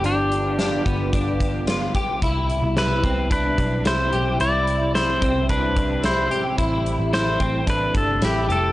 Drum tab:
HH |xxxxxxxx|xxxxxxxx|xxxxxxxx|xxxxxxxx|
SD |--o---o-|--o---o-|--o---o-|--o---o-|
BD |---ooo-o|o--ooo--|---ooo--|o--ooo--|